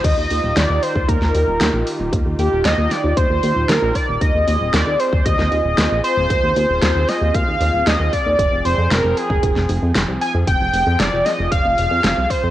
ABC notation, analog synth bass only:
X:1
M:4/4
L:1/16
Q:1/4=115
K:Eb
V:1 name="Analog synth bass" clef=bass
E,, E,, E,, E,,, E,, E,, z E,, E,, E,, E,, E,,, E,, B,,, z E,,, | E,, E,, E,, E,,, E,, E,, z E,, E,, E,, E,, E,,, E,, B,,, z E,,, | E,, E,, E,, E,,, E,, E,, z E,, E,, E,, E,, E,,, E,, B,,, z E,,, | E,, E,, E,, E,,, E,, E,, z E,, E,, E,, E,, E,,, E,, E,, z E,, |
F,,, F,,, F,,, F,, F,,, F,,, z F,,, F,,, F,,, F,,, F,, F,,, C,, z F,, | F,,, F,,, F,,, F,, F,,, F,,, z F,,, F,,, F,,, F,,, F,, F,,, C,, z F,, |]